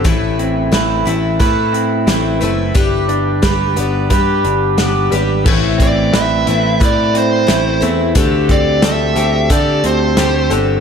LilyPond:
<<
  \new Staff \with { instrumentName = "Lead electric guitar" } { \time 4/4 \key a \minor \tempo 4 = 89 r1 | r1 | r8 d''8 e''4 d''8 c''4 r8 | r8 d''8 e''4 d''8 c''4 r8 | }
  \new Staff \with { instrumentName = "Twelve-string acoustic guitar" } { \time 4/4 \key a \minor <a, e a c' e' b'>4 <a c' e' b'>8 <a c' e' b'>8 <a c' e' b'>4 <a c' e' b'>8 <a c' e' b'>8 | <g d' g' b'>4 <g d' g' b'>8 <d' g' b'>8 <g d' g' b'>4 <g d' g' b'>8 <d' g' b'>8 | <a, e a c' e' b'>4 <a c' e' b'>8 <a c' e' b'>8 <a c' e'>4 <a c' e'>8 <a c' e' b'>8 | <d a c' g' a'>4 <a c' g' a'>8 <c' g' a'>8 <a c' g' a'>4 <a c' g' a'>8 <c' g' a'>8 | }
  \new Staff \with { instrumentName = "Clean electric guitar" } { \time 4/4 \key a \minor a,8 c'8 b'8 e'8 b'8 c'8 e'8 a8 | g8 d'8 b'8 b8 b'8 d'8 b8 g8 | a,8 c'8 b'8 e'8 b'8 c'8 e'8 a8 | d8 c'8 a'8 g'8 a'8 c'8 g'8 d8 | }
  \new Staff \with { instrumentName = "Picked electric bass" } { \clef bass \time 4/4 \key a \minor a,,4 a,,8 a,,8 a,4 a,,8 fis,,8 | g,,4 g,,8 g,,8 g,8 g,,8 g,,8 gis,,8 | a,,4 a,,8 a,,8 a,4 a,,8 e,8 | d,4 d,8 d,8 d8 d,8 d,8 g,,8 | }
  \new DrumStaff \with { instrumentName = "Drums" } \drummode { \time 4/4 <hh bd>8 hh8 <hh sn>8 hh8 <hh bd>8 hh8 <hh sn>8 hh8 | <hh bd>8 hh8 <hh bd sn>8 hh8 <hh bd>8 hh8 <hh sn>8 hh8 | <cymc bd>8 <hh bd>8 <hh sn>8 hh8 <hh bd>8 hh8 <hh sn>8 hh8 | <hh bd>8 <hh bd>8 <hh sn>8 hh8 <hh bd>8 hh8 <hh sn>8 hh8 | }
>>